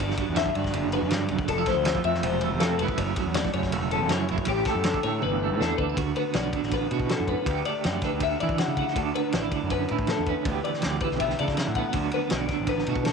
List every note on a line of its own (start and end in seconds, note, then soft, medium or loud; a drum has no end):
0.00 0.14 G1 medium
0.00 1.09 G2 medium
0.00 0.34 D3 medium
0.00 0.17 F#3 medium
0.00 1.46 F#4 medium
0.00 0.36 D5 medium
0.11 snare soft
0.17 0.53 F#3 medium
0.17 kick medium
0.17 ride medium
0.29 0.43 E2 medium
0.35 0.73 D3 medium
0.35 0.56 E5 medium
0.35 snare loud
0.35 ride medium
0.46 kick medium
0.54 0.70 G2 medium
0.54 0.92 F#3 medium
0.54 0.93 D5 medium
0.54 ride medium
0.64 kick medium
0.64 snare soft
0.73 1.04 F#1 medium
0.73 1.47 D3 medium
0.73 ride medium
0.92 1.49 F#3 medium
0.92 1.12 B4 medium
0.92 ride medium
1.02 1.32 G2 medium
1.10 1.29 G2 medium
1.10 1.49 D5 medium
1.10 snare loud
1.10 ride medium
1.28 1.38 F#1 medium
1.28 1.48 F#2 medium
1.28 ride medium
1.39 kick medium
1.48 1.64 F1 medium
1.48 2.77 F2 medium
1.48 1.58 D4 medium
1.48 1.67 A4 medium
1.48 kick loud
1.48 ride medium
1.58 2.80 E4 medium
1.66 2.04 A3 medium
1.66 2.05 C5 medium
1.66 kick medium
1.66 snare soft
1.66 ride medium
1.76 1.91 D2 medium
1.85 2.77 F3 medium
1.85 snare loud
1.85 ride loud
1.95 kick medium
2.04 2.19 F2 medium
2.04 2.43 A3 medium
2.04 2.23 E5 medium
2.04 ride medium
2.15 snare soft
2.23 2.54 E1 loud
2.23 2.78 C3 medium
2.23 2.61 C5 medium
2.23 ride medium
2.41 2.80 A3 medium
2.41 ride medium
2.53 2.80 F2 medium
2.60 2.78 C4 medium
2.60 2.79 A4 medium
2.60 snare loud
2.60 ride medium
2.78 2.86 F#1 medium
2.78 4.27 F#2 medium
2.78 3.16 F#3 medium
2.78 2.99 A3 medium
2.78 3.92 C#4 medium
2.78 4.11 E4 medium
2.78 2.98 B4 medium
2.78 ride medium
2.88 kick medium
2.98 3.13 F#1 medium
2.98 3.36 A3 medium
2.98 3.35 C#5 medium
2.98 kick medium
2.98 ride medium
3.16 4.27 F#3 medium
3.16 kick medium
3.16 ride medium
3.26 3.41 E2 medium
3.34 3.73 A3 medium
3.34 3.53 D5 medium
3.34 snare loud
3.34 ride loud
3.45 kick medium
3.45 snare soft
3.53 3.69 F#2 medium
3.53 4.27 C#3 medium
3.53 3.92 C#5 medium
3.53 ride medium
3.63 kick medium
3.63 snare soft
3.72 4.03 E1 medium
3.72 4.52 A3 medium
3.72 ride medium
3.91 4.27 C#4 medium
3.91 4.11 A4 medium
3.91 ride medium
4.01 4.32 F#2 medium
4.09 4.28 E4 medium
4.09 4.48 C#5 medium
4.09 snare loud
4.09 ride medium
4.28 4.37 F#1 medium
4.28 4.47 F#2 medium
4.28 4.47 E4 medium
4.28 ride medium
4.38 kick medium
4.45 4.62 A1 loud
4.45 4.85 A2 medium
4.45 4.66 G4 medium
4.45 kick loud
4.45 ride medium
4.49 5.79 G4 medium
4.65 5.05 A3 medium
4.65 5.04 A4 medium
4.65 kick medium
4.65 snare soft
4.65 ride medium
4.75 4.90 F#2 loud
4.84 6.53 D3 medium
4.84 snare loud
4.84 ride medium
4.94 kick medium
5.03 5.19 A2 medium
5.03 5.42 A3 medium
5.03 5.22 C#5 medium
5.03 ride medium
5.22 5.52 G1 medium
5.22 5.96 E2 medium
5.22 5.60 B4 medium
5.22 high tom medium
5.43 5.96 A3 medium
5.51 5.60 A2 medium
5.61 5.77 E2 medium
5.61 5.78 D4 medium
5.61 5.79 A4 medium
5.61 snare medium
5.78 5.96 D2 medium
5.78 5.89 D4 medium
5.78 5.97 B4 medium
5.78 kick medium
5.89 5.98 E4 soft
5.97 6.12 D2 medium
5.97 7.47 D2 medium
5.97 6.36 F#4 medium
5.97 kick loud
5.97 ride medium
6.16 6.74 B3 medium
6.16 6.35 B4 medium
6.16 ride medium
6.33 6.50 B1 medium
6.33 6.92 F#4 medium
6.33 6.72 D5 medium
6.33 snare loud
6.33 ride medium
6.53 7.48 D3 medium
6.53 kick medium
6.53 ride medium
6.63 6.85 A1 medium
6.63 snare soft
6.71 7.29 B3 medium
6.71 7.10 B4 medium
6.71 kick medium
6.71 ride medium
6.91 7.47 A2 medium
6.91 7.13 B2 medium
6.91 7.50 F#4 medium
6.91 ride medium
6.99 kick medium
7.09 7.28 A4 medium
7.09 snare loud
7.09 ride medium
7.20 7.34 F#2 medium
7.27 7.49 B3 medium
7.27 7.65 B4 medium
7.27 kick medium
7.27 ride soft
7.46 8.40 D2 medium
7.46 7.62 D2 medium
7.46 8.02 D3 medium
7.46 7.67 A3 medium
7.46 kick loud
7.46 ride medium
7.50 7.84 G4 medium
7.65 8.22 A3 medium
7.65 8.03 D5 medium
7.65 ride medium
7.84 8.00 F#2 medium
7.84 8.40 G4 medium
7.84 snare loud
7.84 ride medium
8.02 9.52 D3 medium
8.02 8.22 B4 medium
8.02 kick medium
8.02 snare soft
8.02 ride medium
8.13 8.35 D2 medium
8.20 8.76 A3 medium
8.20 8.40 E5 medium
8.20 kick medium
8.20 ride medium
8.40 8.96 D2 medium
8.40 8.64 E3 loud
8.40 8.94 E4 medium
8.40 8.59 D5 medium
8.40 ride medium
8.49 kick medium
8.58 8.77 F#5 medium
8.58 snare loud
8.58 ride medium
8.68 8.83 C#3 medium
8.77 9.15 A3 medium
8.77 8.97 F#5 medium
8.77 kick medium
8.77 ride medium
8.88 snare soft
8.96 9.89 D2 medium
8.96 9.11 D2 medium
8.96 9.34 D4 medium
8.96 kick loud
8.96 ride medium
9.15 9.35 B4 medium
9.15 ride medium
9.32 9.49 A1 medium
9.32 9.90 E4 medium
9.32 9.71 D5 medium
9.32 snare loud
9.32 ride medium
9.52 10.48 D3 medium
9.52 kick medium
9.52 ride medium
9.63 9.85 F#2 medium
9.70 10.27 C#4 medium
9.70 10.08 B4 medium
9.70 kick medium
9.70 ride medium
9.88 10.47 D2 medium
9.88 10.13 A2 loud
9.88 10.44 E4 medium
9.88 ride medium
9.99 kick medium
10.07 10.27 A4 medium
10.07 snare medium
10.07 ride medium
10.19 10.33 E2 medium
10.26 10.44 C#4 medium
10.26 10.64 B4 medium
10.26 kick medium
10.26 ride medium
10.45 10.60 D2 medium
10.45 11.40 D2 medium
10.45 11.02 E3 medium
10.45 kick loud
10.45 ride medium
10.50 10.66 B3 medium
10.50 10.83 G4 medium
10.64 11.21 B3 soft
10.64 11.01 D5 medium
10.64 ride medium
10.74 snare soft
10.82 10.99 D2 medium
10.82 11.39 G4 medium
10.82 snare loud
10.82 ride medium
11.00 11.93 E3 medium
11.00 11.19 B4 medium
11.00 kick medium
11.00 ride medium
11.11 11.34 B1 medium
11.11 snare soft
11.20 11.78 B3 medium
11.20 11.38 E5 medium
11.20 kick medium
11.20 ride medium
11.30 snare soft
11.39 11.94 D2 medium
11.39 11.61 C#3 medium
11.39 11.93 A4 medium
11.39 11.57 D5 medium
11.39 ride medium
11.48 kick medium
11.48 snare soft
11.57 11.75 F#5 medium
11.57 snare loud
11.57 ride medium
11.68 11.82 A2 medium
11.75 11.97 B3 medium
11.75 11.95 F#5 medium
11.75 kick medium
11.75 ride medium
11.93 13.13 D2 medium
11.93 12.09 D2 medium
11.93 12.51 D3 medium
11.93 13.13 F#3 medium
11.93 kick loud
11.93 ride medium
11.97 12.15 B3 medium
11.97 12.33 F#4 medium
12.11 12.33 B4 medium
12.11 ride medium
12.15 12.71 B3 medium
12.30 12.47 B1 medium
12.30 12.89 F#4 medium
12.30 12.69 D5 medium
12.30 snare loud
12.30 ride medium
12.48 13.13 D3 medium
12.48 kick medium
12.48 snare soft
12.48 ride medium
12.60 12.82 A1 medium
12.67 13.05 B4 medium
12.67 kick medium
12.67 ride medium
12.71 13.13 B3 medium
12.79 snare soft
12.86 13.13 A2 medium
12.86 13.10 B2 medium
12.86 13.13 F#4 medium
12.86 ride medium
12.96 kick medium
13.05 13.13 A4 medium
13.05 snare loud
13.05 ride medium